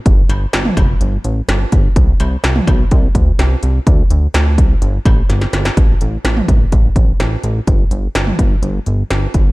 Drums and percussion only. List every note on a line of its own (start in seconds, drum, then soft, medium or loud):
0.06 kick loud
0.06 closed hi-hat medium
0.29 closed hi-hat medium
0.29 struck metal medium
0.53 snare loud
0.53 closed hi-hat medium
0.65 mid tom medium
0.77 kick medium
0.77 closed hi-hat medium
0.77 struck metal medium
1.01 closed hi-hat medium
1.24 closed hi-hat medium
1.49 snare loud
1.49 closed hi-hat medium
1.72 kick medium
1.72 closed hi-hat medium
1.96 kick loud
1.96 closed hi-hat medium
2.20 closed hi-hat medium
2.20 struck metal medium
2.44 snare loud
2.44 closed hi-hat medium
2.56 mid tom medium
2.67 kick medium
2.67 closed hi-hat medium
2.67 struck metal medium
2.91 kick medium
2.91 closed hi-hat medium
3.15 kick loud
3.15 closed hi-hat medium
3.39 snare loud
3.39 closed hi-hat medium
3.63 closed hi-hat medium
3.87 kick loud
3.87 closed hi-hat medium
4.10 closed hi-hat medium
4.34 snare loud
4.34 closed hi-hat medium
4.58 kick loud
4.58 closed hi-hat medium
4.82 closed hi-hat medium
5.05 kick loud
5.05 closed hi-hat medium
5.05 struck metal medium
5.30 snare medium
5.30 closed hi-hat medium
5.41 snare medium
5.53 snare loud
5.53 closed hi-hat medium
5.65 snare loud
5.77 kick loud
5.77 closed hi-hat medium
6.01 closed hi-hat medium
6.25 snare loud
6.25 closed hi-hat medium
6.37 mid tom medium
6.48 kick medium
6.48 closed hi-hat medium
6.72 kick medium
6.72 closed hi-hat medium
6.96 kick medium
6.96 closed hi-hat medium
7.20 snare loud
7.20 closed hi-hat medium
7.44 closed hi-hat medium
7.67 kick loud
7.67 closed hi-hat medium
7.91 closed hi-hat medium
8.15 snare loud
8.15 closed hi-hat medium
8.27 mid tom medium
8.39 kick medium
8.39 closed hi-hat medium
8.63 closed hi-hat medium
8.86 closed hi-hat medium
9.10 snare loud
9.10 closed hi-hat medium
9.34 kick medium
9.34 closed hi-hat medium